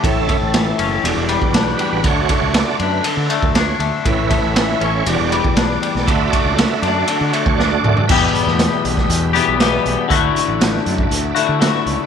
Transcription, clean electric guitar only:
X:1
M:4/4
L:1/8
Q:1/4=119
K:Edor
V:1 name="Clean electric guitar" clef=bass
A,, A, E, C E,, G, D G, | D, A, D, D D, A, D A, | A,, A, E, C E,, G, D G, | D, A, D, D D, A, D A, |
[E,,B,,E,G,B,G]4- [E,,B,,E,G,B,G] [E,,B,,E,G,B,G] [E,,B,,E,G,B,G]2 | [D,A,EF]4- [D,A,EF] [D,A,EF] [D,A,EF]2 |]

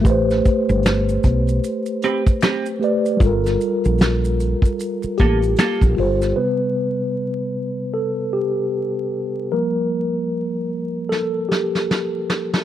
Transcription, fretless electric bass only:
X:1
M:4/4
L:1/16
Q:"Swing 16ths" 1/4=76
K:Aphr
V:1 name="Fretless electric bass" clef=bass
A,,,2 z G,,,3 =B,,,2 z8 | G,,,2 z B,,,4 z3 A,,,2 z B,,, G,,,2 | z16 | z16 |]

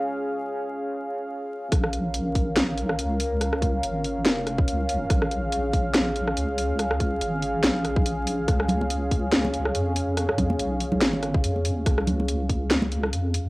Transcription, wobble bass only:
X:1
M:4/4
L:1/8
Q:"Swing 16ths" 1/4=142
K:Bbm
V:1 name="Wobble bass" clef=bass
z8 | B,,,6 D,,2- | D,,2 A,,,2 F,,,2 D,,2 | B,,,6 D,,2- |
D,,2 A,,,2 B,,,4 | D,,6 F,,2- | F,,2 _C,,2 A,,,2 F,,2 | D,,6 F,,2 |]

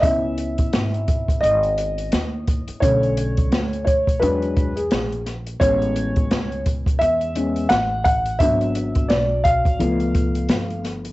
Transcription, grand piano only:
X:1
M:4/4
L:1/16
Q:"Swing 16ths" 1/4=86
K:C#phr
V:1 name="Grand piano"
e8 ^d8 | c6 c2 B3 G3 z2 | c6 z2 e4 f2 f2 | e4 d2 ^e8 z2 |]
V:2 name="Grand piano"
[B,CE]16 | [D,A,C]6 z2 [F,G,D]2 z6 | [G,B,C]8- [G,B,C]2 [G,B,C]2 z4 | [F,B,D]8 [^E,A,B,]8 |]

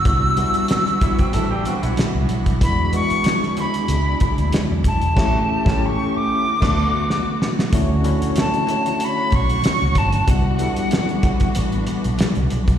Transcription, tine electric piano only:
X:1
M:4/4
L:1/16
Q:"Swing 16ths" 1/4=94
K:D
V:1 name="Tine electric piano"
[G,B,DEF] z [G,B,DEF]4- [G,B,DEF] z8 z | [^G,B,DEF] z [G,B,DEF]4- [G,B,DEF] z8 z | [A,CEG]2 z [A,CEG]2 z4 [A,B,DF]2 z4 z | [A,CDEF] z [A,CDEF]4- [A,CDEF] z8 z |
[G,B,DEF] z [G,B,DEA]4- [G,B,DEA] z8 z |]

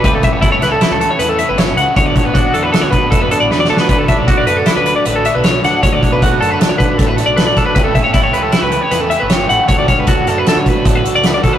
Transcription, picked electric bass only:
X:1
M:5/4
L:1/16
Q:1/4=155
K:D
V:1 name="Picked electric bass" clef=bass
C,,3 G,,,3 C,,2 z C,,2 z E,,3 G,,,3 C,, z | D,,3 A,,,3 E,,2 z D,,2 z F,,3 A,,, E,,2 D,,2 | z3 B,,,3 F,,2 z D,,2 z A,,,3 B,,,3 D,, z | D,,3 B,,,3 F,,2 z D,,2 z A,,,3 B,,,3 D,, z |
C,,3 G,,,3 C,,2 z C,,2 z E,,3 G,,,3 A,,, z | D,,3 C,,3 F,,2 z D,,2 z A,,,3 C,,3 D,, z |]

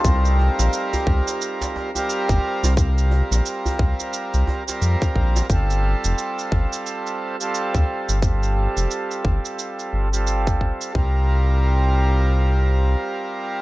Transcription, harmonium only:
X:1
M:4/4
L:1/16
Q:"Swing 16ths" 1/4=88
K:Cdor
V:1 name="Harmonium"
[G,CFB]8- [G,CFB]3 [G,CFB]4- [G,CFB] | [G,CFB]8- [G,CFB]3 [G,CFB]4- [G,CFB] | [G,CFA]8- [G,CFA]3 [G,CFA]4- [G,CFA] | [G,CFA]8- [G,CFA]3 [G,CFA]4- [G,CFA] |
[G,CFB]16 |]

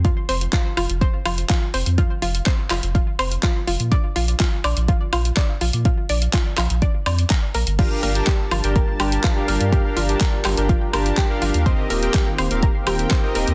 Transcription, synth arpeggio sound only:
X:1
M:4/4
L:1/16
Q:1/4=124
K:Gm
V:1 name="Synth arpeggio sound"
F z c2 F2 F z c2 F2 F z c2 | F2 F z c2 F2 F z c2 F2 F z | d2 F2 F z d2 F2 F z d2 F2 | F z d2 F2 F z d2 d2 b2 B z |
F z B2 G z F z B2 G z F z B2 | G z F z B2 G z F z B2 G z F z | c2 B z G z c2 B z G z c2 B z |]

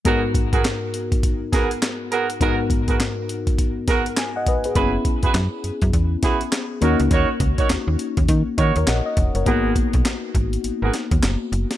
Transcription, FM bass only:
X:1
M:4/4
L:1/16
Q:"Swing 16ths" 1/4=102
K:G#m
V:1 name="FM bass" clef=bass
z16 | z16 | F,,,2 z F,, F,, z F,, F,, E,,2 z4 D,, C,, | D,, z C,, z D,, D,, z D,, D, z D, D,, A,,, z E,,, F,,, |
G,,,3 B,,, z2 G,,,2 G,,, G,,, z D,, F,,, z F,,, z |]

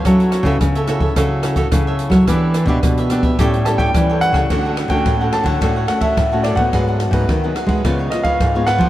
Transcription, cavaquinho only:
X:1
M:4/4
L:1/16
Q:1/4=108
K:D
V:1 name="Cavaquinho"
[FAce]2 [FAce] [FAce] z [Ace] [FAce] [Ace] [FAce]2 [FAce] [FAce] z [Ace]2 [Ace] | [DGBe]2 [DGBe] [DGBe] z [GBe] [DGBe] [GBe] [GAcg]2 [GAcg] [GAcg] z [Acg]2 [Acg] | [DAcf] [Acf] z [Acf]2 [Acf] [DAcf] [Acf] [DAcf] [Acf]2 [Acf]2 [Acf] [DAcf] [Acf] | [^D^GBf] [GBf] z [GBf]2 [GBf] [DGBf] [GBf] [^EBc^e] [Bce]2 [Bce]2 [Bce] [EBce] [ce] |]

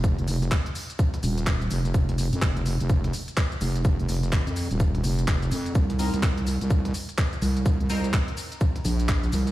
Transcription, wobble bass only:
X:1
M:4/4
L:1/16
Q:"Swing 16ths" 1/4=126
K:Cphr
V:1 name="Wobble bass" clef=bass
F,,, F,,, F,,,2 z6 E,,,4 F,,,2 | F,,,3 F,, F,,,3 F,,,3 z4 F,,,2- | F,,, F,,, F,,,2 A,,, F,,2 E,,,3 F,,,2 F,,,2 F,,2 | C,,3 C,, C,,3 C,,3 z4 C,,2- |
C,, C,, C,,2 z6 B,,,4 C,,2 |]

